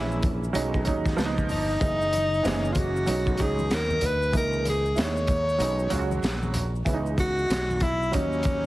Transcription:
Already playing: A#1 E3 G#3 A#3 C#4 E4
0.12 maracas
0.23 kick, closed hi-hat, low conga, maracas
0.44 maracas
0.53 B1 F#3 G#3 C#4 D#4, closed hi-hat, maracas
0.74 kick, maracas
0.85 D#2 F#3 G#3 C#4 D#4, kick, closed hi-hat, maracas
1.06 kick, snare, high conga, maracas
1.17 C#2 F3 A#3 B3 C#4, snare, closed hi-hat, maracas
1.25 D#4
1.38 kick, high conga, maracas
1.49 G1 D#4, open hi-hat, low conga, maracas
1.70 maracas
1.79 F#1 E3 G#3 A#3 D#4, kick, closed hi-hat, maracas
2.02 maracas
2.13 closed hi-hat, high conga, maracas
2.34 maracas
2.43 F#1 E3 G#3 A#3 C4, snare, closed hi-hat, maracas
2.52 C#4
2.65 maracas
2.72 F4, kick, closed hi-hat, low conga, maracas
2.79 F#4
2.96 maracas
3.06 B1 F#3 G#3 C#4 D#4, closed hi-hat, maracas
3.27 kick, maracas
3.37 C#2 F#3 G#3 C#4 D#4, kick, closed hi-hat, maracas
3.42 G#4
3.59 high conga, maracas
3.70 D#2 A#4, snare, closed hi-hat, maracas
3.90 high conga, maracas
4.01 D2, closed hi-hat, low conga, maracas
4.05 B4
4.22 maracas
4.32 C#2 E3 G#3 A#3 D#4, kick, closed hi-hat, maracas
4.37 A#4
4.53 maracas
4.65 G#4, closed hi-hat, high conga, maracas
4.86 maracas
4.96 D#2 G#3 A#3 D4 E4, snare, closed hi-hat, maracas
5.01 D#4 C#5
5.17 maracas
5.27 kick, closed hi-hat, low conga, maracas
5.49 maracas
5.58 B1 F#3 G#3 C#4 D#4, closed hi-hat, maracas
5.79 maracas
5.90 C#2 F#3 G#3 C#4 F4, closed hi-hat, low conga, maracas
5.99 F#4
6.11 high conga, maracas
6.23 A#1, snare, closed hi-hat, maracas
6.43 high conga, maracas
6.54 closed hi-hat, low conga, maracas
6.76 maracas
6.85 C#2 E3 G#3 B3 C#4, kick, closed hi-hat, maracas
6.94 D#4
7.06 maracas
7.18 F#4, kick, closed hi-hat, high conga, maracas
7.39 maracas
7.50 B1, snare, closed hi-hat, high conga, maracas
7.70 high conga, maracas
7.80 E4, kick, closed hi-hat, low conga, maracas
8.02 maracas
8.12 D#2 F#3 A#3 C#4 D#4, kick, closed hi-hat, maracas
8.33 maracas
8.43 kick, closed hi-hat, maracas

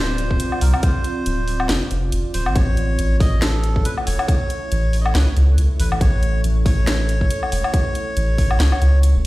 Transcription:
Already playing: D1 C4 F4 C5 D5
0.18 closed hi-hat
0.31 kick
0.40 closed hi-hat
0.52 low woodblock
0.61 C2 A#4, open hi-hat
0.74 low woodblock
0.82 C5, kick, closed hi-hat
1.04 closed hi-hat
1.26 D1, closed hi-hat
1.48 open hi-hat
1.60 low woodblock
1.69 F1, snare, closed hi-hat
1.91 F1, closed hi-hat
2.12 F1, closed hi-hat
2.34 D1 C5, open hi-hat
2.46 A1, low woodblock
2.55 A3 E4 C#5, kick, closed hi-hat
2.77 closed hi-hat
2.99 A1, closed hi-hat
3.20 D#5, kick, open hi-hat
3.42 A4, snare, closed hi-hat
3.64 closed hi-hat
3.76 kick
3.85 B4, closed hi-hat
3.98 low woodblock
4.06 E1 C#5, open hi-hat
4.19 low woodblock
4.28 kick, closed hi-hat
4.50 closed hi-hat
4.72 A1, closed hi-hat
4.93 open hi-hat
5.01 D#5
5.06 low woodblock
5.10 C#5
5.15 C#2, snare, closed hi-hat
5.19 B4
5.29 C#5
5.37 C#2, closed hi-hat
5.58 C#2, closed hi-hat
5.79 A1 B4, open hi-hat
5.92 A1, low woodblock
6.01 C#5, kick, closed hi-hat
6.23 closed hi-hat
6.44 A1, closed hi-hat
6.66 C#5, kick, open hi-hat
6.87 snare, closed hi-hat
7.09 closed hi-hat
7.21 kick
7.31 closed hi-hat
7.43 low woodblock
7.52 E1, open hi-hat
7.64 low woodblock
7.74 kick, closed hi-hat
7.95 closed hi-hat
8.17 A1, closed hi-hat
8.38 kick, open hi-hat
8.51 low woodblock
8.60 C#2, snare, closed hi-hat
8.72 low woodblock
8.81 C#2, closed hi-hat
9.03 closed hi-hat
9.15 E1

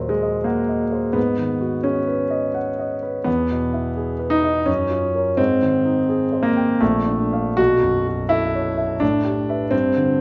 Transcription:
Already playing: D#2 A#2 F#3 F#4 A#4
0.00 C5
0.09 G#3
0.23 D#5
0.44 A#3 F#5
0.69 D#5
0.92 C5
1.13 G#2 B3
1.38 D#3
1.61 F#4
1.83 C#4 G#4
2.07 B4
2.30 D#5
2.54 F#5
2.79 D#5
3.03 B4
3.24 E2 B3
3.51 B2
3.73 E4
3.97 G#4
4.19 B4
4.30 D#4
4.44 D#5
4.66 F#2 C#4
4.90 F4
5.15 A#4 C#5
5.37 G#2 C4
5.62 D#3
5.85 D#4
6.09 G#4
6.33 C5
6.43 A#3
6.57 G5
6.81 A#1 A3
7.07 D4
7.33 D5 F5
7.57 B1 F#4
7.83 F#2
8.08 F#4
8.29 E4 A4
8.55 C#5
8.77 E5
9.00 A2 D4
9.24 G4
9.49 B4 E5
9.71 G2 C4
9.97 D3

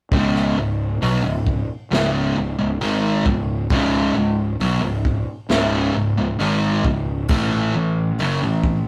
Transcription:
0.11 C#1 C#2 G#2 C#3, kick, open hi-hat
0.35 snare
0.56 C#1 C#2 G#2
1.01 B1 B2 F#3, open hi-hat
1.24 C#1 C#2 G#2
1.47 kick
1.91 C#1 C#2 G#2 C#3, snare, open hi-hat
2.36 C#1 C#2 G#2
2.59 C#1 C#2 G#2
2.80 G#1 G#2 D#3 G#3, open hi-hat
3.25 C#1 C#2 G#2, kick
3.69 C#1 C#2 G#2 C#3, kick, open hi-hat
4.14 C#1 C#2 G#2
4.59 B1 B2 F#3, open hi-hat
4.81 C#1 C#2 G#2
5.05 kick
5.49 C#1 C#2 G#2 C#3, snare, open hi-hat
5.94 C#1 C#2 G#2
6.16 C#1 C#2 G#2
6.38 G#1 G#2 D#3 G#3, open hi-hat
6.84 C#1 C#2 G#2, kick
7.28 A1 A2 E3 A3, kick, crash
7.73 A1 A2 E3
8.18 F#1 F#2 C#3, open hi-hat
8.41 A1 A2 E3
8.64 kick

